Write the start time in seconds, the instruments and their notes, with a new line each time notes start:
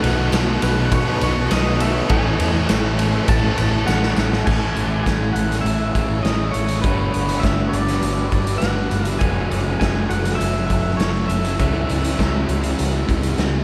Already playing: overdriven electric guitar B2 D#3 F#3 B3 D#4 A4, distorted electric guitar B2 F#3 B3, ambient pad B4 C#5 A5 C#6, clean electric guitar F#5
0.03 fingered electric bass B1, ride, tambourine
0.17 muted overdriven electric guitar stroke
0.29 fingered electric bass B1, overdriven electric guitar B2 D#3 F#3 B3 D#4 A4, distorted electric guitar B2, ride, tambourine
0.34 distorted electric guitar F#3 B3, snare
0.60 fingered electric bass B1, distorted electric guitar B2 F#3, overdriven electric guitar F#3 B3 D#4 A4, clean electric guitar B4, ride, tambourine
0.64 distorted electric guitar B3
0.75 overdriven electric guitar F#3 B3 D#4 A4, muted distorted electric guitar stroke
0.91 fingered electric bass B2, clean electric guitar C#5, kick, ride, tambourine
1.05 overdriven electric guitar F#3 B3 D#4 A4, distorted electric guitar B3
1.09 distorted electric guitar F#3
1.19 fingered electric bass B1, distorted electric guitar B2, overdriven electric guitar F#3 B3 D#4 A4, ride, tambourine
1.24 distorted electric guitar F#3 B3, clean electric guitar C#5
1.34 muted overdriven electric guitar stroke, muted distorted electric guitar stroke
1.48 fingered electric bass B1, overdriven electric guitar B2 D#3 F#3 B3 D#4 A4, distorted electric guitar B2, clean electric guitar D#5, snare, ride, tambourine
1.52 distorted electric guitar F#3 B3
1.78 distorted electric guitar B2, overdriven electric guitar F#3 B3 D#4 A4, clean electric guitar E5, ride, tambourine
1.82 distorted electric guitar F#3 B3
1.93 overdriven electric guitar F#3 B3 D#4 A4, distorted electric guitar F#3 B3
2.07 fingered electric bass A1, overdriven electric guitar A2 E3 A3 C#4 E4 A4, distorted electric guitar A2 E3, ambient pad A4 E5, kick, ride
2.11 distorted electric guitar A3, clean electric guitar G#5
2.39 fingered electric bass E2, ride
2.52 muted overdriven electric guitar stroke
2.66 fingered electric bass A1, overdriven electric guitar A2 E3 A3 C#4 E4 A4, distorted electric guitar A2, ride
2.70 distorted electric guitar E3 A3, snare, tambourine
2.95 distorted electric guitar A2 E3, overdriven electric guitar A3 C#4 E4 A4, ride, tambourine
3.00 distorted electric guitar A3
3.11 overdriven electric guitar A3 C#4 E4 A4, muted distorted electric guitar stroke
3.28 fingered electric bass A1, clean electric guitar A5, kick, ride, tambourine
3.40 distorted electric guitar A3, overdriven electric guitar A3 C#4 E4 A4
3.46 distorted electric guitar E3
3.55 fingered electric bass A1, distorted electric guitar A2 E3, overdriven electric guitar A3 C#4 E4 A4, ride, tambourine
3.59 distorted electric guitar A3
3.71 muted overdriven electric guitar stroke, muted distorted electric guitar stroke
3.85 fingered electric bass A1, overdriven electric guitar A2 E3 A3 C#4 E4 A4, distorted electric guitar A2 E3, clean electric guitar F#5, snare, tambourine
3.90 distorted electric guitar A3
4.03 snare
4.17 fingered electric bass A1, distorted electric guitar A2 E3 A3, overdriven electric guitar A3 C#4 E4 A4, snare, tambourine
4.31 distorted electric guitar E3 A3, overdriven electric guitar A3 C#4 E4 A4, snare
4.46 fingered electric bass A1, overdriven electric guitar A2 E3 A3 C#4 E4, distorted electric guitar A2 E3, ambient pad A3 E4 G#4 C#5, clean electric guitar G#5, kick, crash
4.50 distorted electric guitar A3
4.76 fingered electric bass A1, closed hi-hat
5.03 fingered electric bass A1, clean electric guitar G#5, kick, closed hi-hat
5.08 snare
5.33 fingered electric bass A1, clean electric guitar F#5, closed hi-hat
5.52 snare, closed hi-hat
5.61 fingered electric bass A1, clean electric guitar E5
5.66 closed hi-hat
5.95 fingered electric bass A1, distorted electric guitar A2 E3 A3, kick, closed hi-hat
6.23 fingered electric bass A1, distorted electric guitar A2 E3, clean electric guitar D#5, snare, closed hi-hat
6.28 distorted electric guitar A3
6.51 fingered electric bass A1, clean electric guitar C#5, closed hi-hat
6.68 closed hi-hat
6.82 fingered electric bass G1, overdriven electric guitar G2 D3 G3 B3 D4, distorted electric guitar G2, clean electric guitar B4, kick, closed hi-hat
6.86 distorted electric guitar D3 G3, ambient pad G3 D4 F#4 B4
7.14 fingered electric bass G1, closed hi-hat
7.29 closed hi-hat
7.40 fingered electric bass G1, clean electric guitar E5, kick, closed hi-hat
7.44 snare
7.69 clean electric guitar D5
7.73 fingered electric bass G1, closed hi-hat
7.88 snare, closed hi-hat
8.02 fingered electric bass G1, closed hi-hat
8.32 fingered electric bass G1, distorted electric guitar G2 D3 G3, kick, closed hi-hat
8.47 closed hi-hat
8.58 fingered electric bass G1, distorted electric guitar G2, clean electric guitar F#5, closed hi-hat
8.63 distorted electric guitar D3 G3, snare
8.91 fingered electric bass G1, closed hi-hat
9.05 clean electric guitar E5, closed hi-hat
9.19 fingered electric bass F#1, overdriven electric guitar F#2 C#3 F#3 A3 C#4, distorted electric guitar F#2 C#3, ambient pad F#3 C#4 E4 A4, clean electric guitar G#5, kick, closed hi-hat
9.25 distorted electric guitar F#3
9.50 fingered electric bass F#1, closed hi-hat
9.80 fingered electric bass F#1, clean electric guitar G#5, kick, snare, closed hi-hat
10.10 fingered electric bass F#1, clean electric guitar F#5, closed hi-hat
10.25 snare, closed hi-hat
10.35 clean electric guitar E5
10.41 fingered electric bass F#1, closed hi-hat
10.67 fingered electric bass F#1, distorted electric guitar F#3, clean electric guitar E5, kick, closed hi-hat
10.72 distorted electric guitar F#2 C#3
10.97 fingered electric bass F#1, distorted electric guitar F#2, clean electric guitar C#5, snare, closed hi-hat
11.02 distorted electric guitar C#3 F#3
11.28 fingered electric bass F#1, clean electric guitar E5, closed hi-hat
11.45 closed hi-hat
11.58 fingered electric bass C#2, ambient pad C#3 B3 C#4 F#4, overdriven electric guitar C#3 E3 G#3 C#4, distorted electric guitar C#3 G#3, clean electric guitar E5, kick, closed hi-hat
11.63 distorted electric guitar C#4
11.89 fingered electric bass C#2, closed hi-hat
12.04 closed hi-hat
12.19 fingered electric bass C#2, kick, snare, closed hi-hat
12.49 fingered electric bass C#2, closed hi-hat
12.63 closed hi-hat
12.79 fingered electric bass C#2, closed hi-hat
13.08 fingered electric bass C#2, distorted electric guitar C#3 G#3 C#4, kick, closed hi-hat
13.23 closed hi-hat
13.38 fingered electric bass C#2, distorted electric guitar C#3 G#3 C#4, snare, closed hi-hat